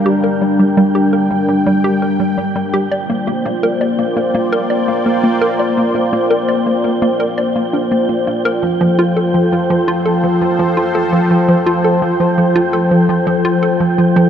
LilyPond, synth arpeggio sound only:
\new Staff \with { instrumentName = "Synth arpeggio sound" } { \time 4/4 \key bes \major \tempo 4 = 84 g'16 bes'16 g16 g16 g16 g'16 bes'16 g16 g16 g16 g'16 bes'16 g16 g16 g16 g'16 | d''16 bes16 bes16 bes16 bes'16 d''16 bes16 bes16 bes16 bes'16 d''16 bes16 bes16 bes16 bes'16 d''16 | bes16 bes16 bes16 bes'16 d''16 bes16 bes16 bes16 bes'16 d''16 bes16 d'16 bes16 bes16 bes16 bes'16 | f16 f16 f'16 a'16 f16 f16 f16 f'16 a'16 f16 f16 f16 f'16 a'16 f16 f16 |
f16 f'16 a'16 f16 f16 f16 f'16 a'16 f16 f16 f16 f'16 a'16 f16 f16 f16 | }